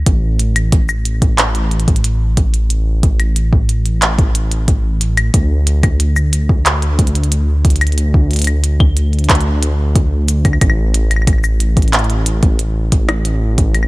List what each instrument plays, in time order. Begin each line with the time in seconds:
0.06 detuned saw bass A1, kick, closed hi-hat
0.39 closed hi-hat
0.56 closed hi-hat, claves
0.72 kick, closed hi-hat
0.89 cabasa, claves
1.05 closed hi-hat
1.22 kick, closed hi-hat
1.38 clap, closed hi-hat
1.55 closed hi-hat
1.71 closed hi-hat
1.80 closed hi-hat
1.88 kick, closed hi-hat
1.96 closed hi-hat
2.04 closed hi-hat
2.37 kick, closed hi-hat
2.54 closed hi-hat
2.70 closed hi-hat
3.03 kick, closed hi-hat
3.20 closed hi-hat, claves
3.36 closed hi-hat
3.53 kick
3.69 closed hi-hat
3.86 closed hi-hat
4.02 clap, closed hi-hat
4.19 kick, closed hi-hat
4.35 closed hi-hat
4.52 closed hi-hat
4.68 kick, closed hi-hat
5.01 closed hi-hat
5.17 closed hi-hat, claves
5.34 detuned saw bass D2, kick, closed hi-hat
5.67 closed hi-hat
5.83 kick, closed hi-hat, claves
6.00 closed hi-hat
6.16 cabasa, claves
6.33 closed hi-hat
6.49 kick
6.66 clap, closed hi-hat
6.82 closed hi-hat
6.99 kick, closed hi-hat
7.07 closed hi-hat
7.15 closed hi-hat
7.24 closed hi-hat
7.32 closed hi-hat
7.65 kick, closed hi-hat
7.70 closed hi-hat
7.76 closed hi-hat
7.81 closed hi-hat, claves
7.87 closed hi-hat
7.92 closed hi-hat
7.98 closed hi-hat
8.14 kick
8.31 closed hi-hat
8.33 closed hi-hat
8.36 closed hi-hat
8.39 closed hi-hat
8.42 closed hi-hat
8.44 closed hi-hat, claves
8.64 closed hi-hat
8.80 kick, claves
8.97 closed hi-hat
9.13 closed hi-hat
9.19 closed hi-hat
9.24 closed hi-hat
9.30 kick, clap, closed hi-hat
9.35 closed hi-hat
9.41 closed hi-hat
9.63 closed hi-hat
9.96 kick, closed hi-hat
10.28 closed hi-hat, cabasa
10.45 kick, closed hi-hat, claves
10.53 claves
10.61 detuned saw bass A1, kick, closed hi-hat, claves
10.70 claves
10.94 closed hi-hat
11.11 closed hi-hat, claves
11.16 claves
11.22 claves
11.27 kick, closed hi-hat, claves
11.33 claves
11.38 claves
11.44 cabasa, claves
11.60 closed hi-hat
11.77 kick, closed hi-hat
11.82 closed hi-hat
11.88 closed hi-hat
11.93 clap, closed hi-hat
11.99 closed hi-hat
12.04 closed hi-hat
12.10 closed hi-hat
12.26 closed hi-hat
12.43 kick, closed hi-hat
12.59 closed hi-hat
12.92 kick, closed hi-hat
13.09 closed hi-hat, percussion blips, claves
13.25 closed hi-hat
13.58 kick, closed hi-hat
13.75 closed hi-hat, claves
13.83 claves